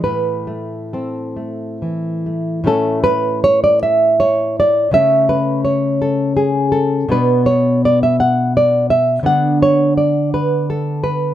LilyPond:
\new Staff \with { instrumentName = "Nylon-string guitar" } { \time 3/4 \key a \minor \tempo 4 = 82 << { b'4 a'4 r4 | \key a \major a'8 b'8 cis''16 d''16 e''8 cis''8 d''8 | e''8 b'8 cis''8 a'8 gis'8 a'8 | b'8 cis''8 d''16 e''16 fis''8 d''8 e''8 |
fis''8 cis''8 d''8 b'8 a'8 b'8 | } \\ { a,8 a8 c'8 a8 e8 a8 | <a, a cis'>2. | <cis a cis'>2. | <b, b d'>2. |
<d b d'>2. | } >> }